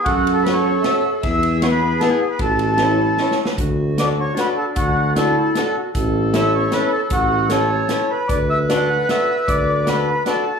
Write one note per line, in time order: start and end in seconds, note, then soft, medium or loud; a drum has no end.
0.04 0.82 F#2 medium
0.04 0.36 F#4 medium
0.04 1.26 A4 loud
0.04 kick medium
0.04 ride soft
0.27 ride soft
0.34 0.44 A4 medium
0.43 0.64 C#4 medium
0.43 0.54 B4 medium
0.43 snare medium
0.43 ride soft
0.47 0.64 F#4 medium
0.47 0.64 A4 medium
0.52 0.83 C#5 medium
0.82 1.02 C#4 medium
0.82 1.02 F#4 soft
0.82 1.02 A4 medium
0.82 1.10 E5 medium
0.82 snare medium
0.82 ride soft
1.22 1.99 E2 medium
1.22 2.41 G#4 loud
1.22 1.62 E5 loud
1.22 kick medium
1.22 ride soft
1.43 ride soft
1.62 1.80 B3 medium
1.62 1.80 E4 medium
1.62 1.80 G#4 medium
1.62 1.67 C#5 medium
1.62 snare medium
1.62 ride soft
1.71 2.01 B4 medium
2.00 2.19 B3 medium
2.00 2.19 E4 soft
2.00 2.19 G#4 medium
2.00 2.09 A4 medium
2.00 snare soft
2.00 ride soft
2.10 2.28 G#4 medium
2.30 2.39 B4 medium
2.39 3.17 A1 medium
2.39 2.77 F#4 medium
2.39 3.35 A4 medium
2.39 kick medium
2.39 ride soft
2.59 ride soft
2.77 2.97 C#4 medium
2.77 2.97 E4 soft
2.77 3.26 E4 medium
2.77 2.82 F#4 medium
2.77 2.97 A4 medium
2.77 snare medium
2.77 ride soft
3.17 3.38 C#4 medium
3.17 3.38 E4 medium
3.17 3.38 A4 medium
3.17 snare soft
3.31 snare soft
3.45 snare medium
3.57 4.35 D2 medium
3.57 4.36 F#4 medium
3.57 kick medium
3.57 closed hi-hat soft
3.98 4.17 D4 medium
3.98 4.18 F#4 medium
3.98 4.18 A4 medium
3.98 4.09 D5 medium
3.98 snare medium
3.98 closed hi-hat soft
4.21 4.39 C#5 medium
4.35 5.17 D4 medium
4.35 4.56 D4 medium
4.35 4.56 F#4 medium
4.35 snare soft
4.35 closed hi-hat soft
4.39 4.56 A4 medium
4.39 4.49 B4 medium
4.58 4.66 A4 medium
4.76 5.53 D2 medium
4.76 5.13 F#4 medium
4.76 kick medium
4.76 closed hi-hat soft
5.15 5.35 D4 medium
5.15 5.57 E4 medium
5.15 5.35 F#4 medium
5.15 5.72 A4 medium
5.15 5.35 A4 medium
5.15 snare medium
5.15 closed hi-hat soft
5.55 5.75 D4 medium
5.55 5.93 F#4 medium
5.55 5.75 F#4 medium
5.55 5.75 A4 medium
5.55 snare soft
5.55 closed hi-hat soft
5.94 6.70 A1 medium
5.94 7.51 A4 loud
5.94 kick medium
5.94 closed hi-hat soft
6.34 6.52 C#4 medium
6.34 6.52 E4 medium
6.34 6.52 A4 medium
6.34 6.55 E5 loud
6.34 snare medium
6.34 closed hi-hat soft
6.55 6.74 C#5 medium
6.72 6.90 C#4 medium
6.72 6.91 E4 medium
6.72 6.90 A4 medium
6.72 6.91 B4 medium
6.72 snare medium
6.72 closed hi-hat soft
6.92 7.01 A4 medium
7.10 7.88 A1 medium
7.10 7.52 F#4 medium
7.10 kick medium
7.10 closed hi-hat soft
7.50 7.68 C#4 medium
7.50 7.68 E4 soft
7.50 8.12 A4 medium
7.50 7.68 A4 medium
7.50 8.10 C#5 medium
7.50 snare medium
7.50 closed hi-hat soft
7.89 8.08 C#4 medium
7.89 8.08 E4 medium
7.89 8.08 A4 medium
7.89 snare medium
7.89 closed hi-hat soft
8.11 8.28 B4 medium
8.28 9.07 D2 medium
8.28 10.34 B4 loud
8.28 8.38 D5 medium
8.28 kick medium
8.28 closed hi-hat soft
8.50 8.59 E5 medium
8.70 8.88 D4 medium
8.70 8.88 F#4 medium
8.70 8.88 A4 medium
8.70 9.10 F#5 medium
8.70 snare medium
8.70 closed hi-hat soft
9.09 9.28 D4 medium
9.09 9.28 F#4 medium
9.09 9.28 A4 medium
9.09 9.50 E5 medium
9.09 snare medium
9.09 closed hi-hat soft
9.48 10.24 D2 medium
9.48 9.88 D5 medium
9.48 kick medium
9.48 closed hi-hat soft
9.87 10.06 D4 medium
9.87 10.06 F#4 medium
9.87 10.06 A4 medium
9.87 10.23 B4 medium
9.87 snare medium
9.87 closed hi-hat soft
10.26 10.44 D4 medium
10.26 10.44 F#4 medium
10.26 10.44 A4 medium
10.26 10.60 A4 medium
10.26 snare soft
10.26 closed hi-hat soft